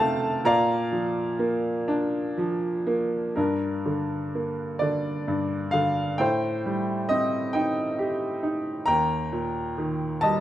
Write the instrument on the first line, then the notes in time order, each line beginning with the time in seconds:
grand piano
Already playing: F2 C3 A3 C4 F5 G5 A5 A#5
0.45 A#2 D5 F5 A#5
0.92 F3
1.39 A#3
1.88 D4
2.38 F3
2.87 A#3
3.36 G2 D4 A#4
3.86 D3
4.35 A#3
4.79 D3 D5
5.28 G2
5.71 D3 F5
6.18 A2 C5 G5
6.66 G3
7.09 C4 D#5
7.53 D#4 G5
7.99 G4
8.43 D#4
8.86 D#2 G5 A#5
9.32 A#2
9.78 D#3
10.21 G3 D#5 A5